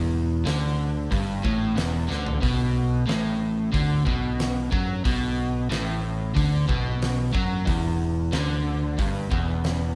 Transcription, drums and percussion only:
0.46 snare, open hi-hat
1.12 kick, open hi-hat
1.45 kick
1.77 snare, open hi-hat
2.10 snare
2.27 floor tom
2.43 kick, open hi-hat
3.09 snare, open hi-hat
3.74 kick, open hi-hat
4.07 kick
4.39 snare, open hi-hat
4.72 kick
5.05 kick, open hi-hat
5.71 snare, open hi-hat
6.37 kick, open hi-hat
6.69 kick
7.02 snare, open hi-hat
7.35 kick
7.67 kick, open hi-hat
8.33 snare, open hi-hat
8.99 kick, open hi-hat
9.32 kick
9.64 snare, open hi-hat

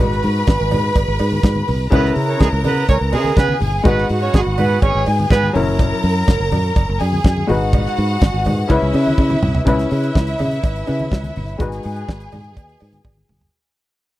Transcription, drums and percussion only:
0.00 low conga
0.12 snare, muted conga
0.23 open hi-hat
0.47 kick, snare, closed hi-hat, cowbell, muted conga
0.60 muted conga
0.71 open hi-hat, cowbell, high conga, low conga
0.96 kick, closed hi-hat, cowbell, muted conga
1.08 muted conga
1.19 open hi-hat, cowbell
1.32 high conga
1.43 kick, snare, closed hi-hat, cowbell, muted conga
1.56 muted conga, high conga
1.68 open hi-hat, low conga
1.92 kick, closed hi-hat, cowbell, low conga
2.04 snare, muted conga
2.16 open hi-hat
2.40 kick, snare, closed hi-hat, cowbell, muted conga
2.64 open hi-hat, cowbell, high conga, low conga
2.88 kick, closed hi-hat, cowbell, muted conga
3.12 open hi-hat, cowbell
3.24 high conga
3.37 kick, snare, closed hi-hat, cowbell
3.49 high conga
3.60 open hi-hat, low conga
3.85 kick, closed hi-hat, cowbell, muted conga, low conga
3.97 snare, muted conga
4.09 open hi-hat
4.33 kick, snare, closed hi-hat, cowbell, muted conga
4.46 muted conga
4.58 open hi-hat, cowbell, high conga, low conga
4.82 kick, closed hi-hat, cowbell, muted conga
5.06 open hi-hat, cowbell
5.19 high conga
5.30 kick, snare, closed hi-hat, cowbell
5.43 high conga
5.55 open hi-hat, low conga
5.79 kick, closed hi-hat, cowbell, muted conga, low conga
5.91 muted conga
6.03 open hi-hat
6.27 kick, snare, closed hi-hat, cowbell, muted conga
6.41 muted conga
6.51 open hi-hat, cowbell, high conga, low conga
6.76 kick, closed hi-hat, cowbell, muted conga
7.00 open hi-hat, cowbell
7.13 high conga
7.24 kick, snare, closed hi-hat, cowbell
7.37 muted conga, high conga
7.49 open hi-hat, low conga
7.73 kick, closed hi-hat, cowbell, low conga
7.86 snare
7.97 open hi-hat
8.21 kick, snare, closed hi-hat, cowbell, muted conga
8.34 muted conga
8.45 open hi-hat, cowbell, high conga, low conga
8.70 kick, closed hi-hat, cowbell
8.82 muted conga
8.94 open hi-hat, cowbell
9.07 high conga
9.18 kick, high tom, cowbell, muted conga
9.30 mid tom, muted conga, high conga
9.43 mid tom, low conga
9.55 floor tom
9.67 kick, closed hi-hat, cowbell, muted conga, low conga
9.79 snare, closed hi-hat
9.91 open hi-hat
10.04 closed hi-hat
10.15 kick, snare, cowbell, muted conga
10.27 closed hi-hat, muted conga
10.39 open hi-hat, cowbell, high conga, low conga
10.51 closed hi-hat
10.63 kick, closed hi-hat, cowbell
10.76 closed hi-hat, muted conga
10.87 open hi-hat, cowbell
10.99 closed hi-hat, high conga
11.12 kick, snare, cowbell
11.24 closed hi-hat, muted conga, high conga
11.36 open hi-hat, low conga
11.48 closed hi-hat
11.60 kick, closed hi-hat, cowbell, low conga
11.72 snare, closed hi-hat, muted conga
11.83 open hi-hat
11.96 closed hi-hat
12.08 kick, snare, cowbell
12.20 closed hi-hat
12.32 open hi-hat, cowbell, high conga, low conga
12.44 closed hi-hat
12.57 kick, closed hi-hat, cowbell, muted conga
12.69 closed hi-hat
12.80 open hi-hat, cowbell
12.93 closed hi-hat, high conga
13.05 kick, high tom, cowbell
13.17 muted conga, high conga
13.29 mid tom, low conga
13.41 floor tom

